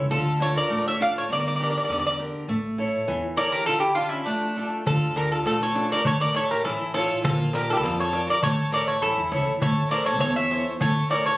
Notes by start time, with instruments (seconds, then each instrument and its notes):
Already playing: upright bass C#2
0.11 upright bass D2, steel-string acoustic guitar D3, violin F4, bouzouki A4
0.40 steel-string acoustic guitar D4 F4 A4, violin A4, bouzouki C#5
0.57 violin A#4, bouzouki D5
0.70 upright bass A1, steel-string acoustic guitar A3
0.87 violin C#5, bouzouki E5
1.00 steel-string acoustic guitar D4 F4 A4, violin D5, bouzouki F5
1.18 violin A4, bouzouki C#5
1.29 upright bass G1, steel-string acoustic guitar G3, violin A#4, bouzouki D5
1.40 bouzouki D5
1.48 bouzouki D5
1.56 steel-string acoustic guitar D4 G4, bouzouki D5
1.61 steel-string acoustic guitar A#4, bouzouki D5
1.71 bouzouki D5
1.78 bouzouki D5
1.84 bouzouki D5
1.89 upright bass E2, steel-string acoustic guitar D3, bouzouki D5
1.99 bouzouki D5
2.07 bouzouki D5
2.19 steel-string acoustic guitar D4 G4 A#4
2.48 upright bass A1, steel-string acoustic guitar A3
2.78 steel-string acoustic guitar E4 A4 C#5
3.08 upright bass E2, steel-string acoustic guitar E3
3.37 steel-string acoustic guitar E4 A4 C#5, violin A#4, bouzouki D5
3.52 violin G4, bouzouki A#4
3.66 steel-string acoustic guitar D3, violin F4, bouzouki A4
3.80 violin E4, bouzouki G4
3.95 violin D4, steel-string acoustic guitar D4 F4 A4, bouzouki F4
4.09 violin C#4, bouzouki E4
4.26 violin A3, steel-string acoustic guitar A3, bouzouki D4
4.56 steel-string acoustic guitar D4 F4 A4
4.86 upright bass D2, steel-string acoustic guitar D3, violin F4, bouzouki A4, darbuka dum
5.16 steel-string acoustic guitar D4 F4 A4, violin G4, bouzouki A#4, darbuka tek
5.32 violin F4, bouzouki A4
5.45 upright bass A#1, steel-string acoustic guitar A3, violin F4, bouzouki A4, darbuka tek
5.62 violin A4, bouzouki C#5
5.75 steel-string acoustic guitar D4 F4 A4, darbuka tek
5.92 violin A#4, bouzouki D5
6.05 upright bass A1, steel-string acoustic guitar A3, violin A4, bouzouki C#5, darbuka dum
6.21 violin A#4, bouzouki D5
6.34 steel-string acoustic guitar E4 A4 C#5, violin A4, bouzouki C#5, darbuka tek
6.51 violin G4, bouzouki A#4
6.64 upright bass A1, steel-string acoustic guitar E3, violin E4, bouzouki A4, darbuka tek
6.94 steel-string acoustic guitar E4 A4 C#5, violin F4, bouzouki A4, darbuka tek
7.24 upright bass A#1, steel-string acoustic guitar A#3, violin F4, bouzouki A4, darbuka dum
7.53 steel-string acoustic guitar F4 A#4 D5, violin G4, bouzouki A#4, darbuka tek
7.70 violin F4, bouzouki G4 A4
7.75 violin E4, bouzouki A4
7.79 violin F4
7.83 upright bass F2, steel-string acoustic guitar F3, violin F4, bouzouki A4, darbuka tek
8.00 violin A4, bouzouki C#5
8.13 steel-string acoustic guitar F4 A#4 D5, darbuka tek
8.30 violin A#4, bouzouki D5
8.43 upright bass A1, steel-string acoustic guitar A3, violin A4, bouzouki C#5, darbuka dum
8.72 steel-string acoustic guitar E4 A4 C#5, violin A#4, bouzouki D5, darbuka tek
8.88 violin A4, bouzouki C#5
9.02 upright bass G2, steel-string acoustic guitar E3, violin E4, bouzouki A4, darbuka tek
9.17 upright bass E2, darbuka tek
9.32 upright bass C#2, steel-string acoustic guitar E4 A4 C#5, darbuka tek
9.47 upright bass A1
9.61 upright bass A1, steel-string acoustic guitar A3, violin A4, bouzouki C#5, darbuka dum
9.91 steel-string acoustic guitar E4 A4 C5, violin A#4, bouzouki D5, darbuka tek
10.06 violin A4, bouzouki C#5
10.20 upright bass E2, steel-string acoustic guitar E3, violin A4, bouzouki C#5, darbuka tek
10.36 violin C#5, bouzouki E5
10.51 steel-string acoustic guitar E4 A4 C5, darbuka tek
10.80 upright bass A1, steel-string acoustic guitar A3, violin A4, bouzouki C#5, darbuka dum
11.10 steel-string acoustic guitar E4 A4 C#5, violin A#4, bouzouki D5, darbuka tek
11.26 violin A4, bouzouki C#5